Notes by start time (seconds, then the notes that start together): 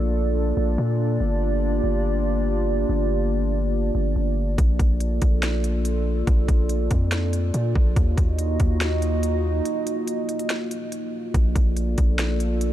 Already playing: A#1 A#3 D4 F4 A4 D5
0.57 A#1
0.78 A#2
1.20 G1 F4 G4
1.84 G1
2.89 G1
3.95 G1
4.16 G1
4.58 A#1 F4 A4, kick, closed hi-hat
4.79 A#1, kick, closed hi-hat
5.00 closed hi-hat
5.22 A#1, kick, closed hi-hat
5.43 snare, closed hi-hat
5.64 closed hi-hat
5.85 closed hi-hat
6.27 A#1, kick, closed hi-hat
6.48 A#1, kick, closed hi-hat
6.69 closed hi-hat
6.91 F2, kick, closed hi-hat
7.12 snare, closed hi-hat
7.33 closed hi-hat
7.54 A#2, closed hi-hat
7.75 A#1, kick
7.96 D#2 A#3 D#4 F4 F#4 D#5, kick, closed hi-hat
8.18 D#2, kick, closed hi-hat
8.39 closed hi-hat
8.60 D#2, kick, closed hi-hat
8.81 snare, closed hi-hat
9.02 closed hi-hat
9.23 closed hi-hat
9.65 closed hi-hat
9.87 closed hi-hat
10.07 closed hi-hat
10.29 closed hi-hat, open hi-hat
10.39 closed hi-hat
10.50 snare, closed hi-hat
10.71 closed hi-hat
10.92 closed hi-hat
11.34 A#1 D4 A4 D5, kick, closed hi-hat
11.56 A#1, kick, closed hi-hat
11.77 closed hi-hat
11.98 A#1, kick, closed hi-hat
12.19 snare, closed hi-hat
12.40 closed hi-hat
12.61 closed hi-hat